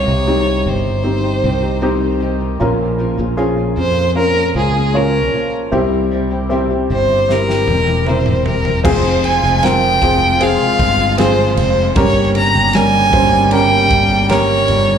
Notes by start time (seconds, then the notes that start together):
Already playing: C3 G3 D#4 G4 C#5
0.06 C2 C4 D#4 G4
0.26 C3 D#3 G3 C4 D#4 G4
0.45 C4 D#4 G4
0.65 G1 D#3 C4 D#4 G4 C5
1.04 C4 D#4 G4
1.24 C4 D#4 G4
1.44 C2 D#3 C4 D#4 G4
1.62 C4 D#4 G4
1.81 C3 D#3 C4 D#4 G4
2.20 D#3 C4 D#4 G4
2.60 A#1 A#2 F3 A#3 C#4 F4 A#4
2.99 F3 A#3 C#4 F4
3.18 A#1 A#3 C#4 F4
3.37 A#2 F3 A#3 C#4 F4 G#4
3.56 A#3 C#4 F4
3.76 F2 F3 A#3 C#4 F4 C5
4.15 C#4 F4 A#4
4.35 A#3 C#4 F4
4.54 C#2 F3 A#3 C#4 F4 G#4
4.74 A#3 C#4 F4
4.93 A#2 F3 A#3 C#4 F4 A#4 C#5
5.33 F3 A#3 C#4 F4
5.72 C2 C3 G3 C4 E4 G4
6.11 G3 C4 E4 G4
6.31 C4 E4 G4
6.49 C3 G3 C4 E4 G4
6.70 C4 E4 G4
6.89 G1 G3 C4 E4 G4 C5
7.28 C4 E4 G4 A#4, snare
7.48 C4 E4 G4, snare
7.68 E1 G3 C4 E4 G4, high tom
7.87 C4 E4 G4, high tom
8.06 C3 G3 C4 E4 G4 A#4 C5, mid tom
8.26 mid tom
8.46 G3 C4 E4 G4 A#4, floor tom
8.65 floor tom
8.84 F1 F2 C3 F3 G#3 C4 F4 G#4 C5, kick, crash
9.05 F3 G#3 C4 G#4
9.24 F3 G#3 C4 G#4 G#5, ride
9.43 F1 F3 G#3 C4 G#4
9.62 F2 C3 F3 G#3 C4 F4 G#4 A#4 G5, snare, ride
10.02 F1 F3 G#3 C4 F4 G#4, kick, ride
10.41 C4 F4 G#4 F5, ride
10.60 F3 G#3 C4 G#4
10.79 G1 F3 G#3 C4 G#4, kick, ride
10.99 F3 G#3 C4 G#4
11.18 F2 C3 F3 G#3 C4 F4 G#4 C5, snare, ride
11.57 F1 F3 G#3 C4 G#4 C5, ride
11.95 G1 G2 C#3 G3 A#3 C#4 G4 A#4 C#5, kick, ride
12.15 A#3 C#4 G4
12.35 G3 A#3 C#4 G4 A#5, ride
12.55 G1 A#3 C#4 G4
12.73 G3 A#3 C#4 A#4 G#5, snare, ride
13.13 G1 G3 A#3 C#4 C5, kick, ride
13.51 C#4 G4 A#4 G5, ride
13.71 A#3 C#4 G4
13.90 G1 G3 A#3 C#4 G4, kick, ride
14.10 A#3 C#4 G4
14.29 G3 A#3 C#4 G4 A#4 C#5, snare, ride
14.68 G1 G3 A#3 C#4 G4, ride